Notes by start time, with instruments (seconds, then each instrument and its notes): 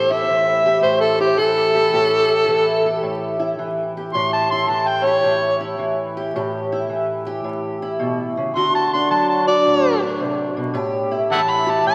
Already playing: steel-string acoustic guitar A2 E3 G4, harmonica C5
0.10 steel-string acoustic guitar E4, harmonica E5
0.30 steel-string acoustic guitar E3
0.66 steel-string acoustic guitar G4
0.83 steel-string acoustic guitar A2, harmonica C5
1.00 harmonica A4
1.20 steel-string acoustic guitar E4, harmonica G4
1.38 steel-string acoustic guitar E3, harmonica A4
1.75 steel-string acoustic guitar G4
1.93 steel-string acoustic guitar A2 G4
2.29 steel-string acoustic guitar E4
2.48 steel-string acoustic guitar E3
2.86 steel-string acoustic guitar G4
3.03 steel-string acoustic guitar A2
3.39 steel-string acoustic guitar E4
3.59 steel-string acoustic guitar E3
3.97 steel-string acoustic guitar G4
4.14 steel-string acoustic guitar A2 G4, harmonica C6
4.33 harmonica A5
4.51 steel-string acoustic guitar E4, harmonica C6
4.69 steel-string acoustic guitar E3, harmonica A5
4.88 harmonica G5
5.04 steel-string acoustic guitar G4, harmonica C#5
5.24 steel-string acoustic guitar A2
5.60 steel-string acoustic guitar E4
5.79 steel-string acoustic guitar E3
6.17 steel-string acoustic guitar G4
6.36 steel-string acoustic guitar A2 G4
6.72 steel-string acoustic guitar E4
6.89 steel-string acoustic guitar E3
7.26 steel-string acoustic guitar G4
7.44 steel-string acoustic guitar A2
7.82 steel-string acoustic guitar E4
7.99 steel-string acoustic guitar B2
8.37 steel-string acoustic guitar C#3
8.55 steel-string acoustic guitar D3 F#4, harmonica C6
8.75 harmonica A5
8.93 steel-string acoustic guitar D4, harmonica C6
9.11 steel-string acoustic guitar F#3, harmonica A5
9.29 harmonica A5
9.47 steel-string acoustic guitar F#4, harmonica D5
9.66 steel-string acoustic guitar A2
10.03 steel-string acoustic guitar D4
10.20 steel-string acoustic guitar C3
10.57 steel-string acoustic guitar B2
10.74 steel-string acoustic guitar A2 G4
11.11 steel-string acoustic guitar E4
11.30 steel-string acoustic guitar E3, harmonica E5 F#5 A5
11.50 harmonica B5
11.67 steel-string acoustic guitar G4, harmonica A5
11.85 steel-string acoustic guitar A2, harmonica A5